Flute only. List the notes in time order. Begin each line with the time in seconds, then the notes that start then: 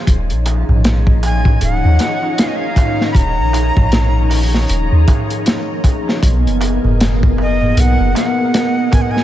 1.25 G#5
1.64 F#5
2.40 F5
2.48 D#5
2.56 F5
3.11 B5
3.16 A#5
7.42 D#5
7.80 F#5
8.18 F#5
8.94 G#5
9.02 F#5
9.11 G#5